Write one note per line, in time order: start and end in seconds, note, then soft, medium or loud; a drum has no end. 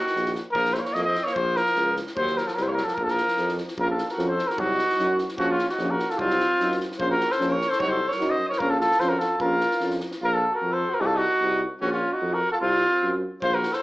0.00 0.33 D#3 medium
0.00 0.34 F#4 medium
0.07 snare soft
0.16 0.38 A#1 medium
0.16 snare soft
0.26 snare soft
0.35 snare soft
0.52 0.77 A#1 medium
0.52 0.75 F3 medium
0.52 0.75 A#4 loud
0.52 kick medium
0.65 snare soft
0.73 0.81 A3 medium
0.73 0.77 C5 medium
0.73 0.80 C5 medium
0.73 snare soft
0.78 0.87 A#3 medium
0.78 0.84 C#5 medium
0.84 0.95 A#3 medium
0.84 0.95 C#5 medium
0.84 snare soft
0.93 1.18 F2 medium
0.93 1.06 A#3 medium
0.93 1.03 D#5 medium
0.93 snare soft
1.04 1.28 C4 medium
1.04 1.25 D#5 medium
1.15 snare soft
1.24 1.37 A#3 medium
1.24 1.35 C#5 medium
1.24 snare soft
1.33 1.58 A#1 medium
1.33 1.57 F3 medium
1.33 1.58 C5 loud
1.33 kick medium
1.56 1.97 F3 medium
1.56 1.97 A#4 loud
1.56 snare soft
1.66 snare soft
1.75 1.99 C#2 medium
1.75 snare soft
1.96 snare soft
2.07 snare soft
2.16 2.39 D#2 medium
2.16 2.36 F#3 medium
2.16 2.39 C5 loud
2.16 kick medium
2.27 snare soft
2.36 2.48 F#3 medium
2.36 2.49 A#4 medium
2.36 snare soft
2.47 2.56 F3 medium
2.47 2.56 A4 medium
2.47 snare soft
2.54 2.80 C2 medium
2.54 2.68 F#3 medium
2.54 2.64 A#4 medium
2.54 snare soft
2.63 2.72 A3 medium
2.63 2.69 C5 medium
2.68 2.73 A#3 medium
2.68 2.73 C5 medium
2.68 2.71 C#5 medium
2.73 2.88 F#3 medium
2.73 2.86 A#4 medium
2.78 snare soft
2.84 2.97 F3 medium
2.84 2.95 A4 medium
2.88 snare soft
2.94 3.05 F3 medium
2.94 3.05 A#4 medium
2.94 kick medium
2.98 3.20 A#1 medium
3.04 3.11 F3 medium
3.04 3.12 A4 medium
3.08 3.57 F3 medium
3.08 3.57 A#4 medium
3.08 snare soft
3.17 snare soft
3.28 snare soft
3.37 3.60 F2 medium
3.37 snare soft
3.48 snare soft
3.58 snare soft
3.68 snare soft
3.77 4.00 A#1 medium
3.77 3.93 F3 medium
3.77 3.94 C#4 medium
3.77 3.89 F4 medium
3.77 3.89 A#4 medium
3.77 kick medium
3.91 4.09 F4 medium
3.91 4.08 A4 medium
3.98 snare soft
4.09 4.29 F#4 medium
4.09 4.28 A#4 medium
4.09 snare soft
4.17 4.40 F2 medium
4.17 4.33 F3 medium
4.17 4.34 C#4 medium
4.17 snare soft
4.28 4.53 A4 medium
4.28 4.49 C5 medium
4.39 snare soft
4.48 4.62 F#4 medium
4.48 4.61 A#4 medium
4.48 snare soft
4.57 4.80 C2 medium
4.57 4.74 F#3 medium
4.57 4.74 D#4 medium
4.57 5.20 D#4 medium
4.57 5.19 F#4 loud
4.57 kick medium
4.79 snare soft
4.89 snare soft
4.97 5.21 F#2 medium
4.97 5.15 F#3 medium
4.97 5.14 D#4 medium
4.97 snare soft
5.18 snare soft
5.29 snare soft
5.38 5.60 A#1 loud
5.38 5.54 F3 medium
5.38 5.55 C#4 medium
5.38 5.50 C#4 medium
5.38 5.53 F#4 medium
5.38 kick medium
5.50 5.70 C#4 medium
5.50 5.69 F4 medium
5.59 snare soft
5.69 5.92 D#4 medium
5.69 5.92 F#4 medium
5.69 snare soft
5.78 6.00 A#1 medium
5.78 5.95 F3 medium
5.78 5.95 C#4 medium
5.78 snare soft
5.90 6.12 F#4 medium
5.90 6.11 A#4 medium
5.99 snare soft
6.10 6.21 F4 medium
6.10 6.19 A4 medium
6.10 snare soft
6.18 6.41 C2 loud
6.18 6.35 F#3 medium
6.18 6.79 C4 medium
6.18 6.34 D#4 medium
6.18 6.79 F4 loud
6.18 kick medium
6.30 snare soft
6.40 snare soft
6.59 6.82 F#2 medium
6.59 6.75 F#3 medium
6.59 6.75 D#4 medium
6.59 snare soft
6.71 snare soft
6.80 snare soft
6.92 snare soft
6.99 7.22 A#1 loud
6.99 7.16 F3 medium
6.99 7.15 C#4 medium
6.99 7.09 F4 medium
6.99 7.09 C5 medium
6.99 kick medium
7.10 7.31 F#4 medium
7.10 7.33 A#4 medium
7.20 snare soft
7.30 7.50 A4 medium
7.30 7.53 C5 medium
7.30 snare soft
7.39 7.62 A#1 medium
7.39 7.55 F3 medium
7.39 7.55 C#4 medium
7.39 snare soft
7.49 7.72 A#4 medium
7.49 7.71 C#5 medium
7.61 snare soft
7.69 7.82 A4 medium
7.69 7.81 C5 medium
7.69 snare soft
7.80 8.03 C2 medium
7.80 7.96 F#3 medium
7.80 7.96 D#4 medium
7.80 7.93 F#4 medium
7.80 7.91 C#5 loud
7.80 kick medium
7.89 8.14 A4 medium
7.89 8.10 C5 medium
8.08 8.31 C#5 medium
8.08 snare soft
8.13 8.33 A#4 medium
8.17 8.34 F#3 medium
8.17 8.36 D#4 medium
8.17 snare soft
8.21 8.43 F#2 medium
8.30 8.51 C5 medium
8.30 8.48 D#5 medium
8.49 8.60 A#4 medium
8.49 8.60 C#5 medium
8.49 snare soft
8.59 8.83 A#1 medium
8.59 8.76 F3 medium
8.59 8.77 C#4 medium
8.59 8.70 F4 medium
8.59 8.71 A#4 loud
8.59 kick medium
8.70 8.80 F4 medium
8.70 8.80 A4 medium
8.80 8.98 F4 medium
8.80 9.01 A4 medium
8.80 snare soft
8.91 snare soft
8.98 9.23 F2 medium
8.98 9.17 F3 medium
8.98 9.17 C#4 medium
8.98 9.12 F4 medium
8.98 9.10 C5 medium
8.98 snare soft
9.09 9.21 F#4 medium
9.09 9.20 A#4 medium
9.19 9.37 F4 medium
9.19 9.40 A4 medium
9.19 snare soft
9.38 9.63 A#1 loud
9.38 9.57 F3 medium
9.38 9.55 C#4 medium
9.38 9.95 F4 medium
9.38 9.97 A#4 medium
9.38 kick medium
9.61 snare soft
9.71 snare soft
9.80 10.03 F2 medium
9.80 9.97 F3 medium
9.80 9.97 C#4 medium
9.80 snare soft
9.90 snare soft
10.00 snare soft
10.11 snare soft
10.20 10.43 A#1 loud
10.20 10.32 F4 medium
10.24 10.35 A#4 medium
10.32 10.50 F4 medium
10.32 10.53 A4 medium
10.50 10.72 F#4 medium
10.55 10.75 A#4 medium
10.62 10.84 F2 medium
10.71 10.91 A4 medium
10.71 10.96 C5 medium
10.89 11.01 F#4 medium
10.94 11.03 A#4 medium
11.00 11.23 C2 loud
11.00 11.07 D#4 medium
11.00 11.07 F#4 medium
11.06 11.16 F4 medium
11.06 11.18 A4 medium
11.14 11.61 D#4 medium
11.14 11.62 F#4 loud
11.41 11.63 C2 medium
11.81 12.03 A#1 loud
11.81 11.91 C#4 medium
11.81 11.93 F#4 medium
11.91 12.15 C#4 medium
11.91 12.14 F4 medium
12.13 12.35 D#4 medium
12.13 12.35 F#4 medium
12.21 12.43 F2 medium
12.33 12.53 F#4 medium
12.33 12.51 A#4 medium
12.52 12.57 F4 medium
12.52 12.56 A4 medium
12.61 12.84 C2 loud
12.61 13.17 C4 medium
12.61 13.17 F4 loud
13.03 13.24 F#2 medium
13.42 13.64 A#1 medium
13.42 13.55 F4 medium
13.42 13.56 C5 loud
13.42 kick medium
13.54 13.74 F#4 medium
13.54 13.76 A#4 medium
13.63 snare soft
13.72 13.82 A4 medium
13.72 13.82 C5 medium
13.72 snare soft